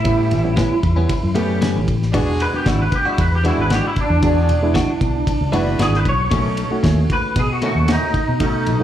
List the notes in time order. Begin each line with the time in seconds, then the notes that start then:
Already playing: A2 E4
0.04 G3 B3 C#4 E4 G4, kick, ride
0.31 A1, ride
0.44 G3 B3 C#4 E4
0.57 A2 G3 B3 C#4, kick, snare, ride
0.71 muted fingered electric bass stroke
0.83 E2, kick, ride
0.96 G3 B3 C#4
1.09 kick, ride
1.24 F#2
1.35 A2 G3 A3 B3 C#4 G4, ride
1.61 A2 G3 B3 C#4, snare, ride
1.76 A1
1.88 kick, ride
2.02 snare
2.12 E1 E3 G#3 B3 D4 F#4 G#4, kick, ride
2.40 B4, ride
2.54 G#3 B3 D4 F#4 G4, muted fingered electric bass stroke
2.66 G#1 E3 G#3 D4 E4 F#4, kick, snare, ride
2.82 B4
2.92 G4, kick, ride
3.05 G#3 D4 E4 F#4
3.18 E2 B4, kick, ride
3.35 G4
3.44 E3 G#3 B3 D4 E4 F#4 G#4, ride
3.58 G#1 B4
3.70 E3 G#3 D4 F#4 G4, snare, ride
3.87 E4
3.96 kick, ride
4.00 D4
4.10 E2
4.21 G#3 B3 D4 F#4 G#4, kick, ride
4.49 E1, ride
4.62 G#3 B3 D4 E4
4.74 E3 G#3 D4 F#4, kick, snare, ride
4.88 muted fingered electric bass stroke
5.01 B1, kick, ride
5.27 kick, ride
5.41 C#2
5.51 F#1 E3 G#3 B3 D4 E4 F#4 B4, ride
5.79 G#1 E3 G#3 D4 F#4 G#4, snare, ride
5.94 B4, snare
6.05 B1 C#5, kick, ride
6.31 B1 B2 D#3 A3 C#4 D#4 F#4 A4, kick, ride
6.57 ride
6.71 A3 C#4 D#4 F#4, muted fingered electric bass stroke
6.83 D#2 B2 D#3 A3 C#4, kick, snare, ride
7.10 B4, kick, ride
7.36 B2 G#4, kick, ride
7.53 F#4
7.62 B2 D#3 A3 C#4 D#4 F#4 A4, ride
7.75 D#2
7.88 B2 D#3 A3 C#4, snare, ride
7.92 D#4
8.14 kick, ride
8.28 B2
8.40 A3 C#4 D#4 F#4 A4, kick, ride
8.67 B1, ride
8.80 A3